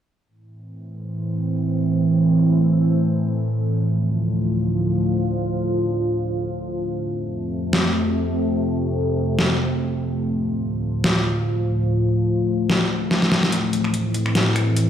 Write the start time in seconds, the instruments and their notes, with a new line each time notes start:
0.28 ambient pad A2 E3 C4
3.59 ambient pad D2 F3
6.90 ambient pad F2 C3 A3
7.73 snare
9.39 snare
10.21 ambient pad D2 A2 F3
11.04 snare
12.70 snare
13.11 snare
13.22 snare
13.32 snare
13.43 snare
13.52 ambient pad E3 C4, closed hi-hat
13.73 closed hi-hat
13.84 finger snap
13.94 closed hi-hat
14.14 closed hi-hat
14.26 finger snap
14.35 snare, closed hi-hat
14.56 finger snap, closed hi-hat
14.77 closed hi-hat